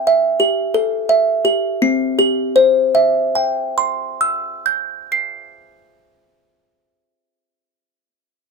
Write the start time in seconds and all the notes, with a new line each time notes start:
Already playing: C4 G5
0.07 E5
0.40 G4
0.74 A4
1.09 E5
1.45 G4
1.82 C4
2.19 G4
2.56 C5
2.95 E5
3.35 G5
3.78 C6
4.21 E6
4.66 G6
5.12 C7